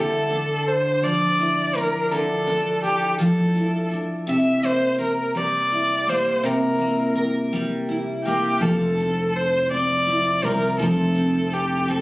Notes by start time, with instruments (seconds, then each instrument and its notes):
Already playing: steel-string acoustic guitar D3 E4, violin A4
0.30 steel-string acoustic guitar D4
0.67 violin C5
1.03 steel-string acoustic guitar F3, violin D5
1.39 steel-string acoustic guitar E4
1.75 steel-string acoustic guitar D4, violin A#4
2.11 steel-string acoustic guitar D3, violin A4
2.47 steel-string acoustic guitar D4
2.84 violin G4, steel-string acoustic guitar A4
3.19 steel-string acoustic guitar F3, violin A4
3.55 steel-string acoustic guitar E4
3.91 steel-string acoustic guitar D4
4.27 steel-string acoustic guitar C3, violin E5
4.62 steel-string acoustic guitar A#3, violin C5
4.98 steel-string acoustic guitar A#4, violin A#4
5.35 steel-string acoustic guitar G3, violin D5
5.71 steel-string acoustic guitar E4
6.08 steel-string acoustic guitar A#3, violin C5
6.43 steel-string acoustic guitar C3, violin A#4
6.79 steel-string acoustic guitar A#3
7.15 steel-string acoustic guitar A#4
7.53 steel-string acoustic guitar G3
7.89 steel-string acoustic guitar E4
8.25 steel-string acoustic guitar A#3, violin G4
8.61 fretless electric bass F1, steel-string acoustic guitar F3, violin A4
8.98 steel-string acoustic guitar C4
9.36 violin C5
9.71 steel-string acoustic guitar C4, violin D5
10.06 steel-string acoustic guitar E4
10.43 fretless electric bass C2, steel-string acoustic guitar C4, violin A#4
10.79 fretless electric bass F1, steel-string acoustic guitar F3, violin A4
11.15 steel-string acoustic guitar C4
11.52 violin G4, steel-string acoustic guitar A4
11.88 steel-string acoustic guitar C4, violin A4